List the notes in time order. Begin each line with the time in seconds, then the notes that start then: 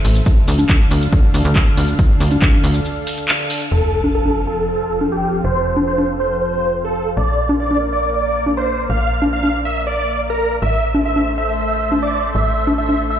Already playing: A3 A4 C5 E5
0.05 A1, open hi-hat, shaker
0.15 closed hi-hat, shaker
0.26 D3 D4 F5, kick, closed hi-hat, shaker
0.37 closed hi-hat
0.48 D2, open hi-hat, shaker
0.59 closed hi-hat, high conga, shaker
0.69 kick, clap, closed hi-hat, shaker
0.80 closed hi-hat
0.91 D2, open hi-hat, shaker
1.02 closed hi-hat, shaker
1.13 kick, closed hi-hat, shaker
1.23 closed hi-hat
1.34 D2, open hi-hat, shaker
1.45 D2, closed hi-hat, shaker
1.56 kick, clap, closed hi-hat, shaker
1.67 closed hi-hat
1.77 D2, open hi-hat, shaker
1.88 closed hi-hat, shaker
1.99 kick, closed hi-hat, shaker
2.10 closed hi-hat
2.20 D2, open hi-hat, shaker
2.31 closed hi-hat, high conga, shaker
2.42 kick, clap, closed hi-hat, shaker
2.53 closed hi-hat, high conga
2.64 D2, open hi-hat, shaker
2.75 closed hi-hat, shaker
2.85 closed hi-hat, shaker
2.96 closed hi-hat
3.07 open hi-hat, shaker
3.18 closed hi-hat, shaker
3.28 clap, closed hi-hat, shaker
3.39 closed hi-hat
3.50 open hi-hat, shaker
3.61 closed hi-hat, shaker
3.72 F1 F3 C4 A4 F5, sub drop
4.04 high conga
4.15 A4
4.26 high conga
4.47 A4
4.69 A4
5.01 high conga
5.12 G4
5.44 F1 C5
5.77 high conga
5.87 C5
5.98 high conga
6.20 C5
6.41 C5
6.85 A4
7.17 A#1 A#3 A#4 D5
7.49 high conga
7.60 D5
7.71 high conga
7.93 D5
8.14 D5
8.46 high conga
8.57 C5
8.90 A#1 F5
9.22 high conga
9.33 F5
9.43 high conga
9.65 E5
9.87 D5
10.30 A#4
10.62 A1 A3 A4 C5 E5
10.95 high conga
11.05 E5
11.16 high conga
11.38 E5
11.59 E5
11.92 high conga
12.03 D5
12.35 A1 E5
12.67 high conga
12.78 E5
12.89 high conga
13.10 E5